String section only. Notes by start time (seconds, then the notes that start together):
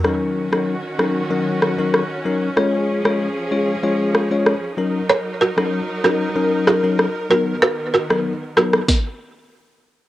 0.04 D#3 C#4 F#4
2.57 F3 G#4
4.78 F#3 D#4 A#4
7.31 D#3 B3